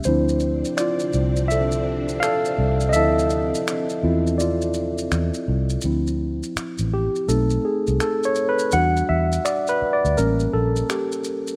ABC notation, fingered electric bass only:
X:1
M:4/4
L:1/16
Q:"Swing 16ths" 1/4=83
K:Dm
V:1 name="Fingered electric bass" clef=bass
D,,4 z2 C,,6 z2 C,,2 | D,,4 z2 E,,6 E,, z C,,2 | D,,4 z A,,,2 z =B,,,2 z C,, z4 | E,,2 E,,2 z3 D,, A,,,2 B,,,2 z4 |]